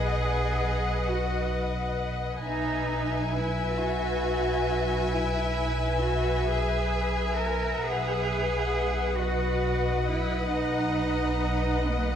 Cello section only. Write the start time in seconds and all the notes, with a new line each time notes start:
Already playing: G#4
1.07 F#4
2.43 D#4
3.34 E4
3.78 F#4
5.10 E4
6.01 F#4
6.45 G#4
7.36 A#4
7.81 G#4
9.15 F#4
10.04 E4
10.49 D#4
11.85 A#3